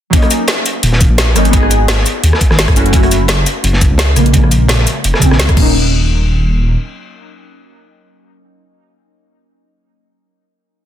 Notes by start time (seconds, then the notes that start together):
0.10 F#3 A#3, kick, closed hi-hat
0.14 C#4 D#4
0.22 cross-stick, closed hi-hat
0.31 closed hi-hat, shaker
0.48 snare, closed hi-hat
0.66 closed hi-hat, shaker
0.83 D#1, closed hi-hat
0.92 snare
1.01 kick, closed hi-hat, shaker
1.10 A#1
1.18 snare, closed hi-hat
1.34 G#1 F#3 A#3 C#4 D#4, cross-stick, closed hi-hat, shaker
1.45 closed hi-hat
1.50 B3 D#4, kick, closed hi-hat
1.55 F#4 G#4
1.63 cross-stick
1.71 closed hi-hat, shaker
1.88 snare, closed hi-hat
1.98 snare
2.06 closed hi-hat, shaker
2.23 D#2, closed hi-hat
2.33 cross-stick, snare
2.41 kick, closed hi-hat, shaker
2.51 G#1, cross-stick, snare
2.59 snare, closed hi-hat
2.68 kick, cross-stick, closed hi-hat
2.75 F#1 A3 C#4 E4 F#4, closed hi-hat, shaker
2.86 closed hi-hat
2.91 A3 C#4, kick, closed hi-hat
2.95 E4 F#4
3.03 cross-stick, closed hi-hat
3.11 closed hi-hat, shaker
3.28 snare, closed hi-hat
3.46 closed hi-hat, shaker
3.64 F#1, closed hi-hat
3.73 snare
3.81 kick, closed hi-hat, shaker
3.91 C#2
3.98 snare, closed hi-hat
4.15 A#1 C#3 F3 G#3 A#3, cross-stick, closed hi-hat, shaker
4.26 closed hi-hat
4.31 C#3 F3, kick, closed hi-hat
4.35 G#3 A#3
4.44 cross-stick
4.51 closed hi-hat, shaker
4.68 snare, closed hi-hat
4.78 snare
4.87 closed hi-hat, shaker
5.04 F1, closed hi-hat
5.14 cross-stick, snare
5.19 C#3 F3, kick, closed hi-hat, shaker
5.23 G#3 C4
5.31 A#1, cross-stick, snare
5.39 C#2, snare, closed hi-hat
5.48 kick, cross-stick, closed hi-hat, shaker
5.52 F#3 A#3
5.57 D#1 C#4, kick, crash
5.62 D#4